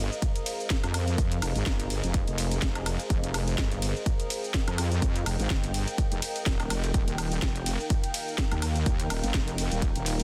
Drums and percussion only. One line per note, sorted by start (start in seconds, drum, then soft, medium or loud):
0.12 shaker soft
0.22 kick loud
0.22 closed hi-hat medium
0.22 shaker soft
0.36 closed hi-hat medium
0.36 shaker soft
0.46 open hi-hat loud
0.46 ride medium
0.46 shaker medium
0.60 shaker soft
0.70 kick loud
0.70 snare loud
0.70 closed hi-hat medium
0.70 shaker soft
0.84 closed hi-hat medium
0.84 high woodblock medium
0.84 shaker soft
0.94 open hi-hat loud
0.94 ride medium
0.94 high woodblock medium
0.94 shaker medium
1.08 closed hi-hat soft
1.08 shaker soft
1.18 kick loud
1.18 closed hi-hat medium
1.18 shaker soft
1.32 closed hi-hat medium
1.32 shaker soft
1.42 open hi-hat loud
1.42 ride medium
1.42 high woodblock medium
1.42 shaker medium
1.56 closed hi-hat soft
1.56 shaker soft
1.66 kick loud
1.66 snare loud
1.66 closed hi-hat medium
1.66 shaker soft
1.80 closed hi-hat medium
1.80 shaker soft
1.90 open hi-hat loud
1.90 ride medium
1.90 shaker medium
2.04 closed hi-hat soft
2.04 shaker soft
2.14 kick loud
2.14 closed hi-hat medium
2.14 shaker soft
2.28 closed hi-hat medium
2.28 shaker soft
2.38 open hi-hat loud
2.38 ride medium
2.38 shaker medium
2.51 closed hi-hat soft
2.51 shaker soft
2.62 kick loud
2.62 snare loud
2.62 closed hi-hat medium
2.62 shaker soft
2.75 closed hi-hat medium
2.75 high woodblock medium
2.75 shaker soft
2.86 open hi-hat loud
2.86 ride medium
2.86 high woodblock medium
2.86 shaker medium
3.00 closed hi-hat soft
3.00 shaker soft
3.10 kick loud
3.10 closed hi-hat medium
3.10 shaker soft
3.24 closed hi-hat medium
3.24 shaker soft
3.34 open hi-hat loud
3.34 ride medium
3.34 high woodblock medium
3.34 shaker medium
3.48 closed hi-hat soft
3.48 shaker soft
3.58 kick loud
3.58 snare loud
3.58 closed hi-hat medium
3.58 shaker soft
3.72 closed hi-hat medium
3.72 shaker soft
3.82 open hi-hat loud
3.82 ride medium
3.82 shaker medium
3.96 shaker soft
4.06 kick loud
4.06 closed hi-hat medium
4.06 shaker soft
4.20 closed hi-hat medium
4.20 shaker soft
4.30 open hi-hat loud
4.30 ride medium
4.30 shaker medium
4.44 shaker soft
4.54 kick loud
4.54 snare loud
4.54 closed hi-hat medium
4.54 shaker soft
4.68 closed hi-hat medium
4.68 high woodblock medium
4.68 shaker soft
4.78 open hi-hat loud
4.78 ride medium
4.78 high woodblock medium
4.78 shaker medium
4.92 closed hi-hat soft
4.92 shaker soft
5.02 kick loud
5.02 closed hi-hat medium
5.02 shaker soft
5.16 closed hi-hat medium
5.16 shaker soft
5.26 open hi-hat loud
5.26 ride medium
5.26 high woodblock medium
5.26 shaker medium
5.40 closed hi-hat soft
5.40 shaker soft
5.50 kick loud
5.50 snare loud
5.50 closed hi-hat medium
5.50 shaker soft
5.64 closed hi-hat medium
5.64 shaker soft
5.74 open hi-hat loud
5.74 ride medium
5.74 shaker medium
5.88 closed hi-hat soft
5.88 shaker soft
5.98 kick loud
5.98 closed hi-hat medium
5.98 shaker soft
6.12 closed hi-hat soft
6.12 shaker soft
6.22 open hi-hat loud
6.22 ride medium
6.22 shaker medium
6.36 closed hi-hat soft
6.36 shaker soft
6.46 kick loud
6.46 snare loud
6.46 closed hi-hat medium
6.46 shaker soft
6.60 closed hi-hat soft
6.60 high woodblock medium
6.60 shaker soft
6.70 open hi-hat loud
6.70 ride medium
6.70 high woodblock medium
6.70 shaker medium
6.84 closed hi-hat soft
6.84 shaker soft
6.94 kick loud
6.94 closed hi-hat medium
6.94 shaker soft
7.08 closed hi-hat medium
7.08 shaker soft
7.18 open hi-hat loud
7.18 ride medium
7.18 high woodblock medium
7.18 shaker medium
7.32 closed hi-hat soft
7.32 shaker soft
7.42 kick loud
7.42 snare loud
7.42 closed hi-hat medium
7.42 shaker soft
7.56 closed hi-hat medium
7.56 shaker soft
7.66 open hi-hat loud
7.66 ride medium
7.66 shaker medium
7.80 shaker soft
7.90 kick loud
7.90 closed hi-hat medium
7.90 shaker soft
8.04 closed hi-hat medium
8.04 shaker soft
8.14 open hi-hat loud
8.14 ride medium
8.14 shaker medium
8.28 shaker soft
8.38 kick loud
8.38 snare loud
8.38 closed hi-hat medium
8.38 shaker soft
8.52 closed hi-hat soft
8.52 high woodblock medium
8.52 shaker soft
8.62 open hi-hat loud
8.62 ride medium
8.62 high woodblock medium
8.62 shaker medium
8.76 closed hi-hat soft
8.76 shaker soft
8.86 kick loud
8.86 closed hi-hat medium
8.86 shaker soft
9.00 closed hi-hat medium
9.00 shaker soft
9.10 open hi-hat loud
9.10 ride medium
9.10 high woodblock medium
9.10 shaker medium
9.24 closed hi-hat soft
9.24 shaker soft
9.34 kick loud
9.34 snare loud
9.34 closed hi-hat medium
9.34 shaker soft
9.48 closed hi-hat medium
9.48 shaker soft
9.58 open hi-hat loud
9.58 ride medium
9.58 shaker medium
9.72 closed hi-hat soft
9.72 shaker soft
9.82 kick loud
9.82 closed hi-hat medium
9.82 shaker soft
9.96 closed hi-hat medium
9.96 shaker soft
10.06 open hi-hat loud
10.06 ride medium
10.06 shaker medium
10.20 closed hi-hat soft